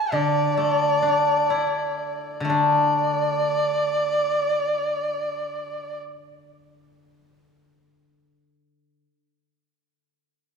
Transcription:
Already playing: erhu A5
0.12 guzheng D3, erhu D5
0.57 guzheng A3
1.02 guzheng D4
1.50 guzheng E4
2.40 guzheng D3
2.45 guzheng A3
2.50 guzheng D4, erhu D5

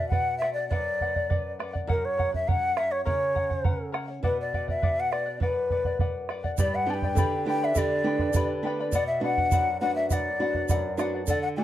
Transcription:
Already playing: nylon-string guitar B2, charango F#5
0.00 charango D5
0.08 charango B4 D5, quena F#5, bombo low
0.13 charango F#5
0.38 charango B4, quena E5, bombo rim
0.43 charango D5 F#5
0.53 quena D5, charango F#5
0.58 charango D5
0.69 nylon-string guitar F#2, charango B4 D5 F#5, quena D5, bombo low
1.01 charango B4 D5 F#5, bombo low
1.16 charango D5 F#5, bombo low
1.29 charango B4 D5 F#5, bombo low
1.59 charango B4 D5 F#5, bombo rim
1.73 charango D5 F#5, bombo low
1.87 nylon-string guitar F#2, charango A#4 C#5 F#5, quena A#4, bombo low
2.05 quena C#5
2.18 charango A#4 C#5 F#5, bombo low
2.32 charango C#5 F#5, quena E5, bombo low
2.48 charango A#4 C#5 F#5, quena F#5, bombo low
2.77 charango A#4 C#5 F#5, quena E5, bombo rim
2.91 quena C#5, charango C#5 F#5
3.05 nylon-string guitar C#3, charango A#4 C#5 F#5, quena C#5, bombo low
3.35 charango A#4 C#5 F#5, bombo low
3.50 charango C#5 F#5, bombo low
3.64 charango A#4 C#5 F#5, bombo low
3.92 charango A#4 C#5 F#5, bombo rim
4.08 charango C#5 F#5
4.23 nylon-string guitar B2, charango B4 D5 F#5, quena B4, bombo low
4.41 quena D5
4.54 charango B4 D5 F#5, bombo low
4.68 charango D5 F#5, quena E5, bombo low
4.82 charango B4 D5 F#5, bombo low
5.00 quena F#5
5.12 charango B4 D5 F#5, quena D5, bombo rim
5.26 charango D5 F#5
5.40 nylon-string guitar F#2, charango B4 D5 F#5, quena B4, bombo low
5.70 charango B4 D5 F#5, bombo low
5.85 charango D5 F#5, bombo low
5.99 charango B4 D5 F#5, bombo low
6.29 charango B4 D5 F#5, bombo rim
6.44 charango D5 F#5, bombo low
6.58 nylon-string guitar G2, charango G4 B4 D5 G5 B5, quena D5, bombo low, shaker
6.75 quena F#5
6.86 nylon-string guitar B3 D4 G4, charango B4 D5 G5 B5, quena A5
6.94 quena G5
7.02 charango B4 D5 B5, bombo low
7.15 nylon-string guitar D3, charango G4 B4 D5 G5, bombo low, shaker
7.19 charango B5
7.45 nylon-string guitar B3 D4 G4, charango B4 D5 G5, quena G5
7.49 charango B5
7.63 charango B4 D5 B5, quena E5
7.75 nylon-string guitar D3, charango G4 B4 D5 G5 B5, quena D5, bombo low, shaker
8.04 nylon-string guitar B3 D4 G4, charango B4 D5 G5
8.08 charango B5
8.19 charango B4 D5 B5, bombo low
8.33 nylon-string guitar D3, charango G4 B4 D5 G5 B5, bombo low, shaker
8.63 nylon-string guitar B3 D4 G4, charango B4 D5 G5
8.67 charango B5
8.80 charango B4 D5 B5
8.92 nylon-string guitar B2, charango B4 D5 F#5, quena D5, bombo low, shaker
9.07 quena E5
9.20 nylon-string guitar B3 D4 F#4, charango B4, quena F#5
9.25 charango D5 F#5
9.38 charango D5 F#5, bombo low
9.51 nylon-string guitar F#2, charango B4 D5 F#5, bombo low, shaker
9.81 nylon-string guitar B3 D4 F#4, charango B4 D5 F#5, quena F#5
9.95 charango D5 F#5, quena E5
10.09 nylon-string guitar F#2, charango B4 D5 F#5, quena D5 E5, bombo low, shaker
10.39 nylon-string guitar B3 D4 F#4, charango B4 D5 F#5
10.54 charango D5 F#5, bombo low
10.69 nylon-string guitar F#2, charango B4 D5 F#5, bombo low, shaker
10.97 nylon-string guitar B3 D4 F#4, charango B4 D5 F#5, bombo rim, shaker
11.14 charango D5 F#5
11.27 nylon-string guitar D3, charango A4 D5 F#5, quena D5, bombo low, shaker
11.42 quena F#5
11.57 nylon-string guitar A3 D4 F#4, charango A4 D5 F#5, quena A5

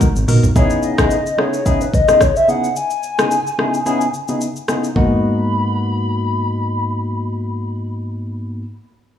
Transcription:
0.01 kick, high tom, shaker
0.16 analog synth bass G#1, shaker
0.28 tine electric piano B3 D#4 F#4 A#4, mid tom, open hi-hat, shaker
0.43 analog synth bass B1, floor tom, shaker
0.55 tine electric piano C#3 B3 D#4 E4 G#4, soft synth lead C#5, kick, shaker
0.70 shaker
0.83 soft synth lead D#5, shaker
0.98 tine electric piano C#3 B3 D#4 E4 G#4, kick, cross-stick, shaker
1.11 shaker
1.26 shaker
1.38 tine electric piano C#3 B3 D#4 E4 G#4, soft synth lead C#5, cross-stick
1.53 shaker
1.65 tine electric piano C#3 B3 D#4 E4 G#4, kick, shaker
1.81 soft synth lead B4, shaker
1.94 soft synth lead D#5, kick, shaker
2.08 tine electric piano C#3 B3 D#4 E4 G#4, cross-stick, shaker
2.21 soft synth lead C#5, kick, cross-stick, shaker
2.36 soft synth lead E5, shaker
2.48 tine electric piano C#3 B3 D#4 E4 G#4, soft synth lead F#5, shaker
2.64 shaker
2.76 soft synth lead G#5, shaker
2.90 shaker
3.03 shaker
3.18 tine electric piano C#3 B3 D#4 E4 G#4, cross-stick, shaker
3.31 shaker
3.47 shaker
3.58 tine electric piano C#3 B3 D#4 E4 G#4, cross-stick
3.74 shaker
3.86 tine electric piano C#3 B3 D#4 E4 G#4, shaker
4.01 shaker
4.14 shaker
4.28 tine electric piano C#3 B3 D#4 E4 G#4, shaker
4.41 shaker
4.56 shaker
4.68 tine electric piano C#3 B3 D#4 E4 G#4, cross-stick, shaker
4.84 shaker
4.95 tine electric piano G#2 A#3 B3 D#4 F#4, soft synth lead B5, kick, floor tom

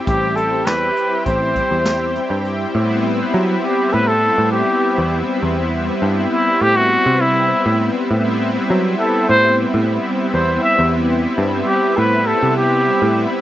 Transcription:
Already playing: analog synth pad G3 C4 E4 G4
0.07 picked electric bass A1, trumpet G4, kick, closed hi-hat
0.36 trumpet A4, closed hi-hat
0.66 picked electric bass E2, trumpet B4, snare, closed hi-hat
0.96 closed hi-hat
1.26 picked electric bass A1, trumpet C5, kick, closed hi-hat
1.56 kick, closed hi-hat
1.71 picked electric bass E2
1.85 snare, closed hi-hat
2.15 closed hi-hat
2.30 picked electric bass G2
2.45 closed hi-hat
2.73 picked electric bass A2, analog synth pad G3 B3 C4 E4
3.34 picked electric bass F#3
3.64 trumpet G4
3.93 picked electric bass A2, trumpet B4
4.07 trumpet A4
4.38 picked electric bass A2
4.52 trumpet G4
4.98 picked electric bass E2
5.43 picked electric bass E2
6.02 picked electric bass G2
6.33 trumpet E4
6.61 picked electric bass A2, trumpet G4
6.76 trumpet F#4
7.06 picked electric bass C3
7.21 trumpet E4
7.66 picked electric bass A2
8.09 picked electric bass A2, analog synth pad G3 B3 C4 E4
8.70 picked electric bass F#3
9.00 trumpet A4
9.29 picked electric bass A2, trumpet C5
9.74 picked electric bass A2
10.34 picked electric bass E2, trumpet C5
10.63 trumpet E5
10.79 picked electric bass E2
11.38 picked electric bass G2
11.67 trumpet G4
11.97 picked electric bass A2, trumpet B4
12.27 trumpet A4
12.43 picked electric bass C3
12.57 trumpet G4
13.02 picked electric bass A2

